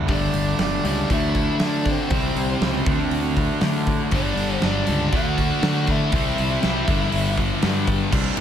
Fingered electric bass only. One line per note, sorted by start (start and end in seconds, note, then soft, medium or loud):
0.09 0.28 G1 medium
0.34 0.53 G1 medium
0.59 0.78 G1 medium
0.84 1.03 C#2 medium
1.10 1.48 D2 medium
1.60 1.98 D3 medium
2.11 2.30 C2 medium
2.35 2.55 C2 medium
2.61 2.80 C#2 medium
2.86 3.05 D2 medium
3.11 3.49 D2 medium
3.61 3.99 D3 medium
4.12 4.31 G1 medium
4.37 4.56 G1 medium
4.63 4.82 G1 medium
4.89 5.07 C#2 medium
5.13 5.50 D2 loud
5.63 6.00 D3 medium
6.12 6.31 C2 loud
6.39 6.57 C2 medium
6.64 6.83 C2 medium
6.88 7.07 G1 medium
7.13 7.51 G1 medium
7.64 8.01 G2 loud
8.13 8.28 C2 loud
8.37 8.41 A2 medium